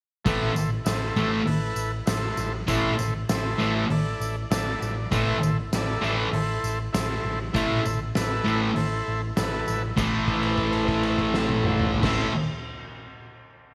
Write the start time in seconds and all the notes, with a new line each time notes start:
0.25 A1 A2 E3 A3 E4 A4 C5, kick, open hi-hat, tambourine
0.56 A1, tambourine
0.85 A1 E4 A4 C5, snare, open hi-hat, tambourine
1.16 A1 A2 E3 A3, tambourine
1.45 A1 E4 A4 B4, open hi-hat
1.76 A1, tambourine
2.06 A1 E4 A4 C5, snare, open hi-hat, tambourine
2.37 A1, tambourine
2.67 A1 A2 E3 A3 E4 A4 C5, kick, open hi-hat, tambourine
2.99 A1, tambourine
3.29 A1 E4 A4 C5, snare, open hi-hat, tambourine
3.58 A1 A2 E3 A3, tambourine
3.90 A1 E4 A4 D5, open hi-hat
4.20 A1, tambourine
4.51 A1 E4 A4 D5 A5, snare, open hi-hat, tambourine
4.81 A1 D5, tambourine
5.11 A1 A2 E3 A3 E4 A4 C5, kick, open hi-hat, tambourine
5.42 A1, tambourine
5.72 A1 E4 A4, snare, open hi-hat, tambourine
5.76 D5
6.01 A1 A2 E3 A3, tambourine
6.33 A1 E4 A4 C5, open hi-hat
6.63 A1, tambourine
6.93 A1 E4 A4 C5, snare, open hi-hat, tambourine
7.24 A1
7.53 A1 A2 E3 A3 E4 A4 C5, kick, open hi-hat, tambourine
7.86 A1, tambourine
8.15 A1 E4 A4 B4, snare, open hi-hat, tambourine
8.45 A1 A2 E3 A3, tambourine
8.75 A1 E4 A4 C5, open hi-hat, tambourine
9.08 A1
9.36 A1 E4 A4 B4, snare, open hi-hat, tambourine
9.68 A1, tambourine
9.97 A1 A2 E3 E4 A4 C5, kick, crash, tambourine
10.01 A3
10.28 kick, crash
10.43 crash
10.57 kick, crash
10.73 crash
10.88 kick, crash
11.03 crash
11.18 kick, crash
11.34 snare
11.49 high tom
11.64 mid tom
11.79 mid tom
11.94 floor tom
12.02 A1 A2 E3 E4 A4 C5, kick, snare, crash
12.07 A3